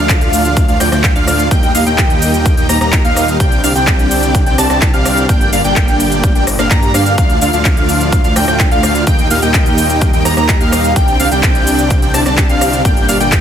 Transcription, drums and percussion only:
0.09 kick, clap, closed hi-hat, shaker
0.21 closed hi-hat, shaker
0.33 open hi-hat, shaker
0.45 closed hi-hat, shaker
0.57 kick, closed hi-hat, shaker
0.68 closed hi-hat, shaker
0.80 cross-stick, open hi-hat, shaker
0.92 cross-stick, closed hi-hat, shaker
1.04 kick, clap, closed hi-hat, shaker
1.16 closed hi-hat, shaker
1.27 cross-stick, open hi-hat, shaker
1.39 closed hi-hat, shaker
1.51 kick, closed hi-hat, shaker
1.63 closed hi-hat, shaker
1.75 open hi-hat, shaker
1.87 closed hi-hat, shaker
1.98 kick, clap, closed hi-hat, shaker
2.10 closed hi-hat, shaker
2.22 open hi-hat, shaker
2.34 closed hi-hat, shaker
2.46 kick, closed hi-hat, shaker
2.57 closed hi-hat, shaker
2.69 cross-stick, open hi-hat, shaker
2.81 cross-stick, closed hi-hat, shaker
2.93 kick, clap, closed hi-hat, shaker
3.05 closed hi-hat, shaker
3.16 cross-stick, open hi-hat, shaker
3.28 closed hi-hat, shaker
3.40 kick, closed hi-hat, shaker
3.52 closed hi-hat, shaker
3.64 open hi-hat, shaker
3.76 closed hi-hat, shaker
3.87 kick, clap, closed hi-hat, shaker
3.99 closed hi-hat, shaker
4.11 open hi-hat, shaker
4.23 closed hi-hat, shaker
4.35 kick, closed hi-hat, shaker
4.46 closed hi-hat, shaker
4.58 cross-stick, open hi-hat, shaker
4.70 cross-stick, closed hi-hat, shaker
4.82 kick, clap, closed hi-hat, shaker
4.94 closed hi-hat, shaker
5.05 cross-stick, open hi-hat, shaker
5.17 closed hi-hat, shaker
5.29 kick, closed hi-hat, shaker
5.41 closed hi-hat, shaker
5.53 open hi-hat, shaker
5.64 closed hi-hat, shaker
5.76 kick, clap, closed hi-hat, shaker
5.88 closed hi-hat, shaker
6.00 open hi-hat, shaker
6.12 closed hi-hat, shaker
6.24 kick, closed hi-hat, shaker
6.35 closed hi-hat, shaker
6.47 cross-stick, open hi-hat, shaker
6.59 cross-stick, closed hi-hat, shaker
6.71 kick, clap, closed hi-hat, shaker
6.83 closed hi-hat, shaker
6.94 cross-stick, open hi-hat, shaker
7.06 closed hi-hat, shaker
7.18 kick, closed hi-hat, shaker
7.30 closed hi-hat, shaker
7.41 open hi-hat, shaker
7.53 closed hi-hat, shaker
7.65 kick, clap, closed hi-hat, shaker
7.77 closed hi-hat, shaker
7.89 open hi-hat, shaker
8.01 closed hi-hat, shaker
8.12 kick, closed hi-hat, shaker
8.24 closed hi-hat, shaker
8.36 cross-stick, open hi-hat, shaker
8.48 cross-stick, closed hi-hat, shaker
8.60 kick, clap, closed hi-hat, shaker
8.71 closed hi-hat, shaker
8.83 cross-stick, open hi-hat, shaker
8.95 closed hi-hat, shaker
9.07 kick, closed hi-hat, shaker
9.19 closed hi-hat, shaker
9.30 open hi-hat, shaker
9.42 closed hi-hat, shaker
9.54 kick, clap, closed hi-hat, shaker
9.66 closed hi-hat, shaker
9.78 open hi-hat, shaker
9.90 closed hi-hat, shaker
10.01 kick, closed hi-hat, shaker
10.13 closed hi-hat, shaker
10.25 cross-stick, open hi-hat, shaker
10.37 cross-stick, closed hi-hat, shaker
10.49 kick, clap, closed hi-hat, shaker
10.61 closed hi-hat, shaker
10.72 cross-stick, open hi-hat, shaker
10.84 closed hi-hat, shaker
10.96 kick, closed hi-hat, shaker
11.08 closed hi-hat, shaker
11.20 open hi-hat, shaker
11.31 closed hi-hat, shaker
11.43 kick, clap, closed hi-hat, shaker
11.55 closed hi-hat, shaker
11.67 open hi-hat, shaker
11.79 closed hi-hat, shaker
11.90 kick, closed hi-hat, shaker
12.02 closed hi-hat, shaker
12.14 cross-stick, open hi-hat, shaker
12.26 cross-stick, closed hi-hat, shaker
12.38 kick, clap, closed hi-hat, shaker
12.49 closed hi-hat, shaker
12.61 cross-stick, open hi-hat, shaker
12.73 closed hi-hat, shaker
12.85 kick, closed hi-hat, shaker
12.97 closed hi-hat, shaker
13.09 open hi-hat, shaker
13.20 closed hi-hat, shaker
13.32 kick, clap, closed hi-hat, shaker

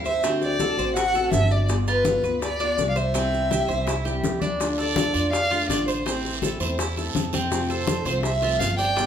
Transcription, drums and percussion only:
0.05 high bongo, high conga, maracas
0.24 high bongo, high conga, maracas
0.42 high bongo, high conga, maracas
0.59 high bongo, high conga, maracas
0.78 high conga, maracas
0.96 high bongo, high conga, maracas
1.14 high bongo, high conga, maracas
1.32 high bongo, low bongo, high conga, maracas
1.51 high bongo, maracas
1.68 high bongo, high conga, maracas
1.87 high bongo, high conga, maracas
2.05 high bongo, high conga, maracas
2.24 high conga, maracas
2.42 high bongo, high conga, maracas
2.60 high bongo, high conga, maracas
2.78 high bongo, low bongo, high conga, maracas
2.96 high bongo, high conga, maracas
3.15 high bongo, high conga, maracas
3.33 high bongo, high conga, maracas
3.51 high bongo, high conga, maracas
3.70 high conga, maracas
3.87 high bongo, high conga, maracas
4.06 high bongo, high conga, maracas
4.24 high bongo, low bongo, high conga, maracas
4.41 high bongo, high conga, maracas
4.60 high bongo, high conga, long guiro, maracas
4.78 high bongo, high conga, maracas
4.96 high bongo, high conga, short guiro, maracas
5.14 high conga, short guiro, maracas
5.33 high bongo, high conga, long guiro, maracas
5.52 high bongo, high conga, maracas
5.70 high bongo, low bongo, high conga, short guiro, maracas
5.88 high bongo, high conga, short guiro, maracas
6.06 high bongo, high conga, long guiro, maracas
6.24 high bongo, high conga, maracas
6.42 high bongo, high conga, short guiro, maracas
6.60 high conga, short guiro, maracas
6.78 high bongo, high conga, long guiro, maracas
6.97 high bongo, high conga, maracas
7.15 high bongo, low bongo, high conga, short guiro, maracas
7.33 high bongo, high conga, short guiro, maracas
7.51 high bongo, high conga, long guiro, maracas
7.69 high bongo, high conga, maracas
7.87 high bongo, high conga, short guiro, maracas
8.05 high conga, short guiro, maracas
8.23 high bongo, high conga, long guiro, maracas
8.42 high bongo, high conga, maracas
8.60 high bongo, low bongo, high conga, short guiro, maracas
8.79 high bongo, high conga, short guiro, maracas
8.97 high bongo, high conga, long guiro, maracas

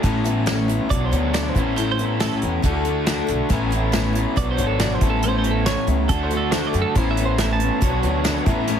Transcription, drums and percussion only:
0.04 kick, closed hi-hat
0.25 closed hi-hat
0.47 snare, closed hi-hat
0.69 closed hi-hat
0.91 kick, closed hi-hat
1.13 closed hi-hat
1.34 snare, closed hi-hat
1.55 kick, closed hi-hat
1.78 closed hi-hat
1.99 closed hi-hat
2.20 snare, closed hi-hat
2.42 closed hi-hat
2.63 kick, closed hi-hat
2.85 closed hi-hat
3.07 snare, closed hi-hat
3.28 closed hi-hat
3.50 kick, closed hi-hat
3.72 closed hi-hat
3.93 snare, closed hi-hat
4.15 closed hi-hat
4.37 kick, closed hi-hat
4.58 closed hi-hat
4.80 snare, closed hi-hat
5.01 kick, closed hi-hat
5.23 closed hi-hat
5.44 closed hi-hat
5.66 snare, closed hi-hat
5.88 closed hi-hat
6.09 kick, closed hi-hat
6.31 closed hi-hat
6.52 snare, closed hi-hat
6.74 closed hi-hat
6.96 kick, closed hi-hat
7.17 closed hi-hat
7.38 snare, closed hi-hat
7.60 closed hi-hat
7.82 kick, closed hi-hat
8.03 closed hi-hat
8.25 snare, closed hi-hat
8.46 kick, closed hi-hat
8.68 closed hi-hat

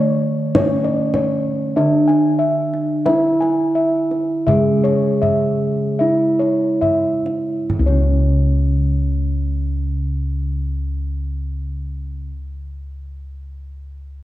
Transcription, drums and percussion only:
0.55 kendang high, kendang low
0.85 kendang slap
1.14 kendang high, kendang low
2.09 kendang slap
2.74 kendang slap
3.06 kendang high
3.42 kendang slap
4.11 kendang slap
4.48 kendang low
4.85 kendang slap
5.23 kendang low
6.42 kendang slap
6.82 kendang low
7.26 kendang slap
7.70 kendang low

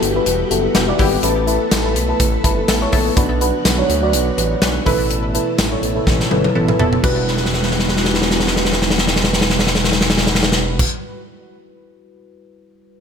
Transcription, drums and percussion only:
0.03 closed hi-hat
0.26 closed hi-hat
0.51 closed hi-hat
0.75 snare, closed hi-hat, tambourine
0.99 kick, open hi-hat
1.23 closed hi-hat
1.47 closed hi-hat
1.71 snare, closed hi-hat, tambourine
1.96 closed hi-hat
2.20 kick, closed hi-hat
2.44 kick, closed hi-hat
2.68 snare, closed hi-hat, tambourine
2.92 kick, open hi-hat
3.17 kick, closed hi-hat
3.41 closed hi-hat
3.65 snare, closed hi-hat, tambourine
3.90 closed hi-hat
4.13 closed hi-hat
4.38 closed hi-hat
4.62 snare, closed hi-hat, tambourine
4.86 kick, open hi-hat
5.11 closed hi-hat
5.35 closed hi-hat
5.58 snare, closed hi-hat, tambourine
5.83 closed hi-hat
6.07 kick, snare
6.20 snare
6.31 high tom
6.44 high tom
6.68 mid tom
6.79 floor tom
6.93 floor tom
7.04 kick, crash
7.28 snare
7.37 snare
7.46 snare
7.53 snare
7.63 snare
7.71 snare
7.79 snare
7.89 snare
7.97 snare
8.05 snare
8.14 snare
8.22 snare
8.31 snare
8.40 snare
8.47 snare
8.56 snare
8.65 snare
8.73 snare
8.82 snare
8.90 snare
8.98 snare
9.07 snare
9.16 snare
9.24 snare
9.33 snare
9.41 snare
9.50 snare
9.59 snare
9.67 snare
9.75 snare
9.84 snare
9.92 snare
10.01 snare
10.10 snare
10.18 snare
10.27 snare
10.35 snare
10.43 snare
10.52 snare
10.79 kick, crash

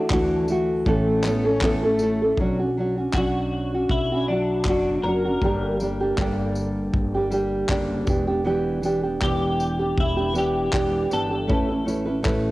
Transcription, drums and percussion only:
0.10 kick, clap
0.48 tambourine
0.86 kick
1.23 clap, tambourine
1.61 kick, clap
1.99 tambourine
2.37 kick
3.14 kick, clap
3.89 kick
4.65 kick, clap
5.42 kick
5.80 tambourine
6.18 kick, clap
6.55 tambourine
6.94 kick
7.31 tambourine
7.69 kick, clap
8.07 kick, tambourine
8.83 tambourine
9.22 kick, clap
9.60 tambourine
9.98 kick
10.35 tambourine
10.73 kick, clap
11.11 tambourine
11.50 kick
11.88 tambourine
12.25 kick, clap

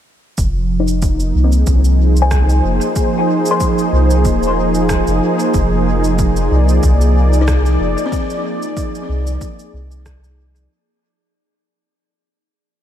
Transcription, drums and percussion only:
0.38 kick, cabasa
0.88 cabasa
1.02 kick, cabasa
1.20 cabasa
1.52 cabasa
1.67 kick, cabasa
1.84 cabasa
2.17 cabasa
2.31 kick, cross-stick, cabasa
2.49 cabasa
2.81 cabasa
2.96 kick, cabasa
3.46 cabasa
3.60 kick, cabasa
3.78 cabasa
4.11 cabasa
4.25 kick, cabasa
4.43 cabasa
4.75 cabasa
4.89 kick, cross-stick, cabasa
5.07 cabasa
5.39 cabasa
5.54 kick, cabasa
6.04 cabasa
6.19 kick, cabasa
6.36 cabasa
6.69 cabasa
6.83 kick, cabasa
7.01 cabasa
7.33 cabasa
7.48 kick, cross-stick, cabasa
7.66 cabasa
7.98 cabasa
8.12 kick, cabasa
8.30 cabasa
8.62 cabasa
8.77 kick, cabasa
8.95 cabasa
9.27 cabasa
9.41 kick, cabasa
9.59 cabasa
9.92 cabasa
10.06 kick, cross-stick, cabasa
10.24 cabasa
10.56 cabasa

